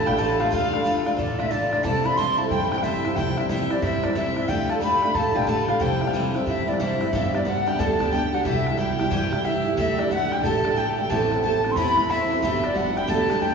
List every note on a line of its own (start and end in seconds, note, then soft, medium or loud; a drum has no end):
0.00 1.18 D4 medium
0.00 0.46 E4 medium
0.00 0.19 A4 medium
0.00 1.79 B4 medium
0.06 0.48 A1 loud
0.06 0.17 A3 soft
0.06 0.18 D4 medium
0.06 0.18 F4 medium
0.06 2.43 G4 medium
0.06 0.19 G5 loud
0.06 0.21 G5 medium
0.06 bodhran medium
0.13 0.39 D3 medium
0.13 bodhran medium
0.18 0.40 A3 medium
0.18 0.40 D4 medium
0.18 0.38 F4 medium
0.18 1.84 A4 medium
0.18 0.41 A5 loud
0.18 0.42 A5 medium
0.18 bodhran medium
0.39 0.50 A3 soft
0.39 0.51 D4 soft
0.39 0.52 F4 medium
0.39 0.51 F5 medium
0.39 bodhran medium
0.51 0.71 D2 medium
0.51 0.72 D3 medium
0.51 0.73 A3 medium
0.51 0.72 D4 medium
0.51 1.46 F4 medium
0.51 0.71 F4 medium
0.51 0.90 F5 loud
0.51 0.90 F5 medium
0.51 bodhran medium
0.72 0.84 A3 soft
0.72 0.85 D4 medium
0.72 0.84 F4 medium
0.72 bodhran medium
0.84 1.06 D3 medium
0.84 1.06 A3 medium
0.84 1.05 D4 medium
0.84 1.04 F4 medium
0.84 bodhran medium
1.05 1.17 A3 medium
1.05 1.18 D4 medium
1.05 1.17 F4 medium
1.05 bodhran medium
1.15 1.37 A1 medium
1.15 1.38 D3 medium
1.15 1.39 A3 medium
1.15 1.38 D4 medium
1.15 1.50 D4 medium
1.15 1.18 C5 medium
1.15 1.40 D5 medium
1.15 1.41 D5 medium
1.15 bodhran medium
1.20 1.37 F4 medium
1.38 1.80 A1 medium
1.38 1.50 A3 soft
1.38 1.51 D4 soft
1.38 2.83 E4 medium
1.38 1.51 F4 medium
1.38 1.52 E5 medium
1.38 1.53 E5 medium
1.38 bodhran medium
1.50 1.72 D3 medium
1.50 1.72 A3 medium
1.50 3.70 D4 medium
1.50 1.72 D4 medium
1.50 1.70 F4 medium
1.50 1.85 D5 medium
1.50 1.86 D5 medium
1.50 bodhran medium
1.71 1.84 A3 soft
1.71 1.85 D4 medium
1.71 1.84 F4 medium
1.71 bodhran medium
1.83 2.03 C2 loud
1.83 2.05 C3 medium
1.83 2.05 E3 medium
1.83 2.05 G3 medium
1.83 2.05 C4 medium
1.83 2.03 E4 medium
1.83 2.38 A4 medium
1.83 2.06 A5 loud
1.83 2.05 A5 medium
1.83 bodhran medium
2.04 2.17 G3 soft
2.04 2.18 C4 soft
2.04 2.17 E4 medium
2.04 2.23 B4 medium
2.04 2.17 B5 medium
2.04 2.19 B5 medium
2.04 bodhran medium
2.16 2.38 C3 medium
2.16 2.39 E3 medium
2.16 2.39 G3 medium
2.16 2.39 C4 medium
2.16 2.36 E4 medium
2.16 4.14 C5 medium
2.16 2.39 C6 medium
2.16 2.40 C6 medium
2.16 bodhran medium
2.37 2.51 C4 medium
2.37 2.50 E4 medium
2.37 4.58 A4 medium
2.37 2.49 A5 medium
2.37 2.50 A5 medium
2.41 2.50 G3 soft
2.49 2.70 G2 medium
2.49 2.71 E3 medium
2.49 2.72 G3 medium
2.49 2.72 C4 medium
2.49 2.70 E4 medium
2.49 2.71 G4 medium
2.49 2.69 G5 medium
2.49 2.70 G5 medium
2.49 bodhran medium
2.70 3.12 G2 medium
2.70 2.84 C4 medium
2.70 2.83 E4 medium
2.70 3.16 G4 medium
2.70 2.84 G5 medium
2.70 2.83 G5 medium
2.70 bodhran medium
2.74 2.83 G3 soft
2.74 bodhran medium
2.82 3.04 C3 medium
2.82 3.05 E3 medium
2.82 3.05 G3 medium
2.82 3.05 C4 medium
2.82 3.11 E4 medium
2.82 3.03 E4 medium
2.82 3.17 E5 medium
2.82 3.14 E5 medium
2.82 bodhran medium
3.05 3.17 G3 soft
3.05 3.17 C4 soft
3.05 3.17 E4 medium
3.05 3.44 F4 medium
3.05 bodhran medium
3.15 3.36 C2 loud
3.15 3.37 C3 medium
3.15 3.38 E3 medium
3.15 3.38 G3 medium
3.15 3.38 C4 medium
3.15 3.36 E4 medium
3.15 4.48 G4 medium
3.15 3.38 G5 medium
3.15 3.40 G5 medium
3.15 bodhran medium
3.37 3.50 G3 soft
3.37 3.50 C4 soft
3.37 3.50 E4 medium
3.37 3.49 E4 medium
3.37 3.48 E5 medium
3.37 3.50 E5 medium
3.37 bodhran medium
3.49 3.71 C3 medium
3.49 3.71 E3 medium
3.49 3.71 G3 medium
3.49 3.71 C4 medium
3.49 3.82 E4 medium
3.49 3.69 E4 medium
3.49 3.72 E5 medium
3.49 3.70 E5 medium
3.49 bodhran medium
3.70 3.82 G3 soft
3.70 3.83 C4 medium
3.70 4.03 D4 medium
3.70 3.82 E4 medium
3.70 3.83 D5 medium
3.70 bodhran medium
3.81 4.02 G2 loud
3.81 4.03 E3 medium
3.81 4.04 G3 medium
3.81 4.03 C4 medium
3.81 4.15 E4 medium
3.81 4.02 E4 medium
3.81 4.05 E5 medium
3.81 4.06 E5 medium
3.81 bodhran medium
4.03 4.45 G2 medium
4.03 4.15 G3 soft
4.03 4.16 C4 medium
4.03 6.67 D4 medium
4.03 4.15 E4 medium
4.03 4.14 D5 medium
4.03 4.16 D5 medium
4.03 bodhran medium
4.10 bodhran medium
4.15 4.37 C3 medium
4.15 4.37 E3 medium
4.15 4.37 G3 medium
4.15 4.36 C4 medium
4.15 4.36 E4 medium
4.15 4.35 E4 medium
4.15 4.35 E5 medium
4.15 4.51 E5 medium
4.15 bodhran medium
4.36 4.49 G3 soft
4.36 4.49 C4 medium
4.36 4.48 E4 medium
4.36 5.74 E4 medium
4.36 4.50 E5 medium
4.36 bodhran medium
4.48 4.68 D2 loud
4.48 4.69 D3 medium
4.48 4.70 A3 medium
4.48 4.69 D4 medium
4.48 4.68 F4 medium
4.48 5.35 G4 medium
4.48 4.71 G5 loud
4.48 4.71 G5 medium
4.48 bodhran medium
4.69 4.81 A3 soft
4.69 4.82 D4 soft
4.69 4.81 F4 medium
4.69 5.13 A4 medium
4.69 4.81 A5 medium
4.69 bodhran medium
4.81 5.02 D3 medium
4.81 5.03 A3 medium
4.81 5.03 D4 medium
4.81 5.01 F4 medium
4.81 6.85 B4 medium
4.81 5.17 B5 medium
4.81 5.16 B5 medium
4.81 bodhran medium
5.02 5.14 A3 soft
5.02 5.15 D4 soft
5.02 5.14 F4 medium
5.02 bodhran medium
5.14 5.34 A1 medium
5.14 5.35 D3 medium
5.14 5.36 A3 medium
5.14 5.35 D4 medium
5.14 5.33 F4 medium
5.14 5.47 A4 medium
5.14 5.37 A5 loud
5.14 5.48 A5 medium
5.14 bodhran medium
5.35 5.77 A1 loud
5.35 5.47 A3 soft
5.35 5.47 D4 medium
5.35 5.47 F4 medium
5.35 5.80 G4 medium
5.35 5.49 G5 medium
5.42 bodhran medium
5.47 5.68 D3 medium
5.47 5.69 A3 medium
5.47 5.69 D4 medium
5.47 5.67 F4 loud
5.47 7.67 A4 medium
5.47 5.70 A5 loud
5.47 5.63 A5 medium
5.47 bodhran medium
5.64 5.80 F4 medium
5.64 6.52 F4 medium
5.64 5.72 G5 medium
5.69 5.81 A3 soft
5.69 5.81 D4 soft
5.69 5.82 F5 medium
5.69 5.80 F5 medium
5.69 bodhran medium
5.78 6.00 C2 loud
5.78 6.01 C3 medium
5.78 6.02 E3 medium
5.78 6.02 G3 medium
5.78 6.01 C4 medium
5.78 7.52 G4 medium
5.78 6.22 G5 medium
5.78 6.08 G5 medium
5.78 5.83 A5 medium
5.78 bodhran medium
5.83 6.00 E4 medium
6.01 6.13 G3 soft
6.01 6.14 C4 soft
6.01 6.13 E4 soft
6.01 bodhran medium
6.07 6.22 F5 medium
6.07 bodhran medium
6.13 6.35 C3 medium
6.13 6.35 E3 medium
6.13 6.35 G3 medium
6.13 6.35 C4 medium
6.13 6.33 E4 medium
6.13 bodhran medium
6.34 6.46 G3 medium
6.34 6.47 C4 medium
6.34 6.46 E4 medium
6.34 bodhran medium
6.46 6.66 G2 medium
6.46 6.68 E3 medium
6.46 6.68 G3 medium
6.46 6.68 C4 medium
6.46 7.12 E4 medium
6.46 6.66 E4 medium
6.46 6.70 E5 medium
6.46 6.67 E5 medium
6.46 bodhran medium
6.67 7.09 G2 medium
6.67 6.79 G3 soft
6.67 6.80 C4 soft
6.67 7.33 D4 medium
6.67 6.80 E4 medium
6.67 6.80 D5 medium
6.67 6.79 D5 medium
6.74 bodhran medium
6.79 7.01 C3 medium
6.79 7.01 E3 medium
6.79 7.01 G3 medium
6.79 9.79 C4 medium
6.79 7.01 C4 medium
6.79 6.99 E4 medium
6.79 7.11 C5 medium
6.79 7.11 E5 medium
6.79 bodhran medium
7.00 7.13 G3 soft
7.00 7.13 C4 soft
7.00 7.13 E4 medium
7.00 bodhran medium
7.13 7.75 G2 loud
7.13 7.34 G2 medium
7.13 7.34 D3 medium
7.13 7.35 G3 medium
7.13 7.35 B3 medium
7.13 7.34 D4 medium
7.13 8.45 E4 medium
7.13 7.32 G4 medium
7.13 7.36 E5 medium
7.13 7.33 E5 medium
7.13 bodhran medium
7.34 7.44 G3 soft
7.34 7.45 B3 soft
7.34 9.98 D4 medium
7.34 7.47 D4 medium
7.34 7.46 G4 medium
7.34 7.46 D5 medium
7.34 bodhran medium
7.45 7.67 G3 medium
7.45 7.67 B3 medium
7.45 7.66 D4 medium
7.45 7.74 F#4 medium
7.45 7.65 G4 medium
7.45 7.69 F#5 medium
7.45 bodhran medium
7.66 7.79 G3 soft
7.66 7.79 B3 soft
7.66 7.79 D4 medium
7.66 7.79 G4 medium
7.66 8.12 G4 medium
7.66 7.80 G5 medium
7.66 7.81 G5 medium
7.66 bodhran medium
7.79 7.98 D2 loud
7.79 8.00 G2 medium
7.79 8.01 D3 medium
7.79 8.01 G3 medium
7.79 8.00 B3 medium
7.79 7.99 D4 medium
7.79 7.98 G4 medium
7.79 9.99 A4 medium
7.79 8.13 A5 medium
7.79 8.14 A5 loud
7.79 bodhran medium
7.99 8.41 D2 medium
7.99 8.10 G3 soft
7.99 8.11 B3 medium
7.99 8.12 D4 medium
7.99 8.12 G4 medium
7.99 bodhran medium
8.11 8.33 G3 medium
8.11 8.33 B3 medium
8.11 8.33 D4 medium
8.11 8.31 G4 medium
8.11 8.35 G5 medium
8.11 8.35 G5 loud
8.11 bodhran medium
8.33 8.45 G3 soft
8.33 8.46 B3 soft
8.33 8.46 D4 soft
8.33 8.84 F#4 medium
8.33 8.45 G4 medium
8.33 8.44 F#5 medium
8.33 8.45 F#5 medium
8.45 9.07 C2 loud
8.45 8.66 C3 medium
8.45 8.67 E3 medium
8.45 8.67 G3 medium
8.45 9.44 E4 medium
8.45 8.67 E4 medium
8.45 8.65 G4 medium
8.45 8.79 E5 medium
8.45 8.76 E5 medium
8.45 bodhran medium
8.66 8.78 G3 soft
8.66 8.79 E4 soft
8.66 8.78 G4 soft
8.66 bodhran medium
8.77 8.99 E3 medium
8.77 9.00 G3 medium
8.77 8.99 E4 medium
8.77 10.16 G4 medium
8.77 8.97 G4 medium
8.77 9.46 G5 medium
8.77 9.46 G5 loud
8.77 bodhran medium
8.99 9.10 G3 medium
8.99 9.11 E4 medium
8.99 9.11 G4 medium
8.99 bodhran medium
9.11 9.30 G2 medium
9.11 9.32 C3 medium
9.11 9.32 E3 medium
9.11 9.33 G3 medium
9.11 9.32 E4 medium
9.11 9.30 G4 medium
9.11 bodhran medium
9.31 9.73 G2 medium
9.31 9.43 G3 medium
9.31 9.44 E4 medium
9.31 9.44 G4 medium
9.31 bodhran medium
9.43 9.65 E3 medium
9.43 9.65 G3 medium
9.43 9.55 E4 medium
9.43 9.65 E4 medium
9.43 9.64 G4 medium
9.43 9.77 E5 medium
9.43 bodhran medium
9.55 9.66 E4 medium
9.65 9.77 G3 soft
9.65 9.78 E4 medium
9.65 9.77 E4 medium
9.65 9.77 G4 medium
9.77 10.39 D2 loud
9.77 9.98 D3 medium
9.77 9.99 A3 medium
9.77 9.99 D4 medium
9.77 12.08 E4 medium
9.77 9.97 G4 medium
9.77 10.00 E5 medium
9.77 10.01 E5 loud
9.77 bodhran medium
9.98 10.10 A3 soft
9.98 12.62 D4 medium
9.98 10.11 D4 soft
9.98 10.10 G4 medium
9.98 10.10 D5 medium
9.98 10.12 D5 medium
9.98 bodhran medium
10.10 10.31 D3 medium
10.10 10.32 A3 medium
10.10 10.32 D4 medium
10.10 10.37 F#4 medium
10.10 10.30 G4 medium
10.10 10.32 F#5 medium
10.10 10.34 F#5 medium
10.10 bodhran medium
10.31 10.44 A3 soft
10.31 10.44 D4 medium
10.31 10.76 G4 medium
10.31 10.43 G4 medium
10.31 10.43 G5 medium
10.31 10.44 G5 loud
10.31 bodhran medium
10.43 10.63 A1 loud
10.43 10.65 D3 medium
10.43 10.65 A3 medium
10.43 10.65 D4 medium
10.43 10.63 G4 medium
10.43 10.63 A4 loud
10.43 10.78 A5 medium
10.43 10.79 A5 loud
10.43 bodhran medium
10.64 11.06 A1 medium
10.64 10.76 A3 soft
10.64 10.77 D4 soft
10.64 10.76 G4 medium
10.64 11.10 A4 medium
10.64 bodhran medium
10.76 10.98 D3 medium
10.76 10.98 A3 medium
10.76 10.97 D4 medium
10.76 10.98 G4 medium
10.76 10.96 G4 medium
10.76 10.88 G5 medium
10.76 10.87 G5 loud
10.76 bodhran medium
10.88 10.99 G5 medium
10.97 11.11 A3 soft
10.97 11.10 D4 soft
10.97 11.09 G4 medium
10.97 12.36 G4 medium
10.97 11.12 G5 medium
10.97 11.12 G5 loud
11.10 11.72 A1 loud
11.10 11.31 A2 medium
11.10 11.31 E3 medium
11.10 11.31 B3 medium
11.10 11.31 C4 medium
11.10 11.29 E4 medium
11.10 11.42 A4 medium
11.10 11.43 A5 loud
11.10 11.43 A5 medium
11.10 bodhran medium
11.30 11.44 B3 soft
11.30 11.43 C4 soft
11.30 11.43 E4 soft
11.30 bodhran medium
11.43 11.64 E3 medium
11.43 11.64 B3 medium
11.43 11.64 C4 medium
11.43 11.62 E4 medium
11.43 13.08 A4 medium
11.43 11.72 A5 loud
11.43 11.69 A5 medium
11.43 bodhran medium
11.63 11.76 B3 medium
11.63 11.76 C4 soft
11.63 11.76 E4 medium
11.63 bodhran medium
11.71 11.78 C6 medium
11.76 11.95 E2 medium
11.76 11.97 A2 medium
11.76 11.98 E3 medium
11.76 11.97 B3 medium
11.76 11.98 C4 medium
11.76 11.95 E4 medium
11.76 13.54 B4 medium
11.76 12.11 B5 medium
11.76 12.11 B5 loud
11.76 bodhran medium
11.97 12.38 E2 medium
11.97 12.10 B3 medium
11.97 12.09 C4 soft
11.97 12.09 E4 medium
11.97 bodhran medium
12.09 12.30 E3 medium
12.09 12.30 B3 medium
12.09 12.31 C4 medium
12.09 12.42 E4 medium
12.09 12.29 E4 medium
12.09 12.42 E5 loud
12.09 12.43 E5 medium
12.09 bodhran medium
12.30 12.43 B3 medium
12.30 12.44 C4 soft
12.30 12.42 E4 medium
12.30 12.74 F#4 medium
12.42 13.05 G1 loud
12.42 12.63 G2 medium
12.42 12.64 D3 medium
12.42 12.64 G3 medium
12.42 12.64 B3 medium
12.42 12.63 D4 medium
12.42 13.54 E4 medium
12.42 12.62 G4 medium
12.42 12.65 E5 medium
12.42 12.66 E5 medium
12.42 bodhran medium
12.63 12.73 G3 soft
12.63 12.74 B3 soft
12.63 13.54 D4 medium
12.63 12.75 D4 medium
12.63 12.75 G4 medium
12.63 12.78 D5 medium
12.63 12.77 D5 medium
12.63 bodhran medium
12.75 12.96 G3 medium
12.75 12.97 B3 medium
12.75 12.95 D4 medium
12.75 13.02 F#4 medium
12.75 12.94 G4 medium
12.75 12.97 F#5 medium
12.75 12.99 F#5 medium
12.75 bodhran medium
12.95 13.07 G3 medium
12.95 13.07 B3 medium
12.95 13.08 D4 medium
12.95 13.08 G4 medium
12.95 13.41 G4 medium
12.95 13.08 G5 loud
12.95 13.11 G5 medium
12.95 bodhran medium
13.07 13.28 D2 loud
13.07 13.29 G2 medium
13.07 13.29 D3 medium
13.07 13.30 G3 medium
13.07 13.30 B3 medium
13.07 13.28 D4 medium
13.07 13.27 G4 medium
13.07 13.54 A4 medium
13.07 13.43 A5 loud
13.07 13.44 A5 medium
13.07 bodhran medium
13.28 13.54 D2 medium
13.28 13.39 G3 soft
13.28 13.41 B3 medium
13.28 13.41 D4 medium
13.28 13.41 G4 medium
13.28 bodhran medium
13.40 13.54 G3 medium
13.40 13.54 B3 medium
13.40 13.54 D4 medium
13.40 13.54 G4 medium
13.40 13.54 G5 loud
13.40 13.54 G5 medium
13.40 bodhran medium